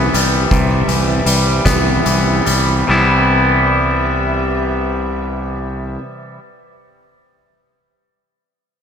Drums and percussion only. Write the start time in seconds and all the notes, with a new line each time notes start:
0.14 closed hi-hat
0.51 kick, closed hi-hat
0.89 closed hi-hat
1.26 closed hi-hat
1.66 kick, snare, closed hi-hat
2.06 closed hi-hat
2.46 closed hi-hat